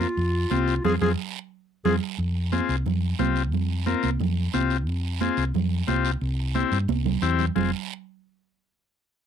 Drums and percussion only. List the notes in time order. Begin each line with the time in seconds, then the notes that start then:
0.01 high conga, short guiro
0.17 high conga, long guiro
0.51 high conga, short guiro
0.68 short guiro
0.84 low conga, long guiro
1.01 low conga, long guiro
1.85 low conga, long guiro
2.19 long guiro
2.52 high conga, short guiro
2.69 short guiro
2.86 low conga, long guiro
3.19 high conga, low conga, short guiro
3.36 short guiro
3.52 low conga, long guiro
3.86 high conga, short guiro
4.03 high conga, short guiro
4.20 low conga, long guiro
4.54 high conga, short guiro
4.70 short guiro
4.87 long guiro
5.20 high conga, short guiro
5.37 short guiro
5.54 low conga, long guiro
5.88 high conga, short guiro
6.05 short guiro
6.21 long guiro
6.55 high conga, short guiro
6.72 short guiro
6.88 high conga, long guiro
7.06 low conga
7.22 short guiro
7.39 low conga, short guiro
7.56 low conga, long guiro